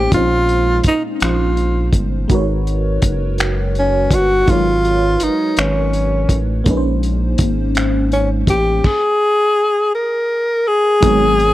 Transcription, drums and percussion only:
0.12 kick medium
0.12 closed hi-hat medium
0.49 closed hi-hat soft
0.84 kick medium
0.84 closed hi-hat medium
1.20 finger snap medium
1.20 closed hi-hat medium
1.57 closed hi-hat soft
1.93 kick medium
1.93 closed hi-hat medium
2.29 kick loud
2.29 closed hi-hat medium
2.67 closed hi-hat soft
3.02 kick medium
3.02 closed hi-hat medium
3.38 finger snap loud
3.38 closed hi-hat medium
3.75 closed hi-hat soft
4.11 kick medium
4.11 closed hi-hat medium
4.47 kick loud
4.47 closed hi-hat medium
4.85 closed hi-hat soft
5.20 closed hi-hat medium
5.57 finger snap loud
5.57 closed hi-hat soft
5.93 closed hi-hat soft
6.29 kick medium
6.29 closed hi-hat medium
6.66 kick medium
6.66 closed hi-hat medium
7.03 closed hi-hat soft
7.38 kick medium
7.38 closed hi-hat medium
7.75 finger snap loud
7.75 closed hi-hat medium
8.12 closed hi-hat soft
8.47 kick medium
8.47 closed hi-hat medium
8.84 kick medium
8.84 crash medium
11.02 kick loud
11.02 closed hi-hat medium
11.40 closed hi-hat soft

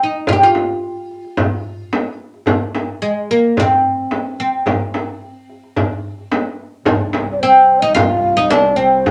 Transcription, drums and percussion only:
0.01 darbuka ka soft
0.14 darbuka ka soft
0.27 frame drum medium
0.27 darbuka dum medium
0.55 darbuka tek medium
0.55 frame drum medium
0.69 darbuka ka soft
0.83 darbuka ka soft
1.11 darbuka ka soft
1.25 darbuka ka soft
1.37 frame drum medium
1.37 darbuka dum medium
1.65 darbuka ka soft
1.93 darbuka tek medium
1.93 frame drum medium
2.20 darbuka ka soft
2.34 darbuka ka soft
2.46 darbuka dum medium
2.46 frame drum medium
2.75 darbuka tek medium
2.75 frame drum medium
2.89 darbuka ka soft
3.02 darbuka ka soft
3.30 darbuka ka soft
3.44 darbuka ka soft
3.57 darbuka dum medium
3.57 frame drum medium
3.85 darbuka ka soft
4.11 darbuka tek medium
4.11 frame drum medium
4.39 darbuka ka soft
4.53 darbuka ka soft
4.66 darbuka dum medium
4.66 frame drum medium
4.94 darbuka tek medium
4.94 frame drum medium
5.08 darbuka ka soft
5.22 darbuka ka soft
5.50 darbuka ka soft
5.63 darbuka ka soft
5.76 darbuka dum medium
5.76 frame drum medium
6.04 darbuka ka soft
6.18 darbuka ka soft
6.32 darbuka tek medium
6.32 frame drum medium
6.59 darbuka ka soft
6.86 darbuka dum medium
6.86 frame drum medium
7.13 darbuka tek medium
7.13 frame drum medium
7.29 darbuka ka soft
7.69 darbuka ka soft
7.84 darbuka ka soft
7.96 frame drum medium
7.96 darbuka dum medium
8.39 darbuka ka soft
8.51 darbuka tek medium
8.51 frame drum medium
8.93 darbuka ka soft
9.06 darbuka dum medium
9.06 frame drum medium

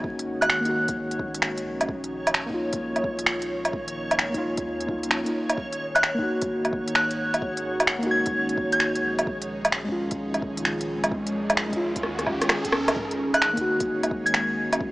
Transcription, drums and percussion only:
0.04 kick loud
0.19 closed hi-hat soft
0.42 closed hi-hat medium
0.42 low woodblock medium
0.50 finger snap loud
0.65 closed hi-hat soft
0.88 kick loud
0.88 closed hi-hat medium
1.11 closed hi-hat soft
1.19 kick loud
1.35 closed hi-hat medium
1.42 finger snap loud
1.58 closed hi-hat soft
1.81 closed hi-hat medium
1.81 low woodblock soft
1.89 kick loud
2.04 closed hi-hat soft
2.27 closed hi-hat medium
2.27 low woodblock medium
2.34 finger snap loud
2.50 kick medium
2.73 kick loud
2.73 closed hi-hat medium
2.96 closed hi-hat soft
2.96 low woodblock soft
3.04 kick loud
3.19 closed hi-hat medium
3.26 finger snap loud
3.42 closed hi-hat soft
3.65 closed hi-hat medium
3.65 low woodblock soft
3.73 kick loud
3.88 closed hi-hat soft
4.11 closed hi-hat medium
4.11 low woodblock medium
4.19 finger snap loud
4.34 kick medium
4.34 closed hi-hat soft
4.57 kick loud
4.57 closed hi-hat medium
4.81 closed hi-hat soft
4.89 kick loud
5.03 closed hi-hat medium
5.11 finger snap loud
5.26 closed hi-hat soft
5.50 closed hi-hat medium
5.50 low woodblock soft
5.58 kick loud
5.73 closed hi-hat soft
5.96 closed hi-hat medium
5.96 low woodblock medium
6.03 finger snap loud
6.19 kick medium
6.42 kick loud
6.42 closed hi-hat medium
6.65 closed hi-hat soft
6.65 low woodblock soft
6.73 kick loud
6.88 closed hi-hat soft
6.95 finger snap loud
7.11 closed hi-hat soft
7.34 closed hi-hat soft
7.34 low woodblock soft
7.42 kick loud
7.57 closed hi-hat soft
7.80 closed hi-hat medium
7.80 low woodblock medium
7.87 finger snap medium
8.03 closed hi-hat soft
8.26 kick medium
8.26 closed hi-hat medium
8.49 closed hi-hat soft
8.58 kick medium
8.72 closed hi-hat soft
8.80 finger snap loud
8.95 closed hi-hat soft
9.19 closed hi-hat soft
9.19 low woodblock soft
9.27 kick loud
9.42 closed hi-hat soft
9.65 closed hi-hat medium
9.65 low woodblock medium
9.72 finger snap loud
9.89 kick medium
10.11 kick medium
10.11 closed hi-hat medium
10.34 closed hi-hat soft
10.34 low woodblock soft
10.42 kick medium
10.57 closed hi-hat medium
10.65 finger snap loud
10.81 closed hi-hat soft
11.04 closed hi-hat medium
11.04 low woodblock medium
11.12 kick loud
11.27 closed hi-hat soft
11.50 closed hi-hat medium
11.50 low woodblock medium
11.57 finger snap loud
11.73 kick medium
11.73 closed hi-hat soft
11.96 kick loud
11.96 closed hi-hat medium
12.03 cross-stick medium
12.19 cross-stick medium
12.19 closed hi-hat soft
12.27 kick loud
12.27 low woodblock soft
12.42 cross-stick medium
12.42 closed hi-hat medium
12.49 finger snap loud
12.49 cross-stick medium
12.65 kick medium
12.65 closed hi-hat soft
12.72 cross-stick loud
12.88 cross-stick medium
12.88 closed hi-hat medium
12.88 low woodblock medium
12.96 kick loud
13.11 closed hi-hat soft
13.34 closed hi-hat medium
13.34 low woodblock medium
13.42 finger snap loud
13.57 kick medium
13.57 closed hi-hat soft
13.80 kick loud
13.80 closed hi-hat medium
14.03 closed hi-hat soft
14.03 low woodblock soft
14.11 kick loud
14.27 closed hi-hat medium
14.34 finger snap loud
14.73 closed hi-hat medium
14.73 low woodblock medium
14.81 kick loud

